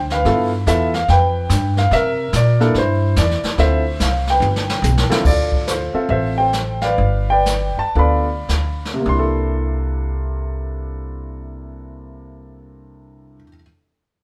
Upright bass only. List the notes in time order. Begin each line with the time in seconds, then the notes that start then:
Already playing: D2
0.25 G2
0.67 E2
1.08 F2
1.50 G2
1.91 C3
2.33 A#2
2.74 G2
3.16 E2
3.43 muted upright bass stroke
3.58 D2
4.00 C2
4.40 G1
4.82 B1
5.10 muted upright bass stroke
5.25 D2
5.93 muted upright bass stroke
6.09 A1
6.98 G1
7.77 muted upright bass stroke
7.96 D2
8.49 D2
9.06 C2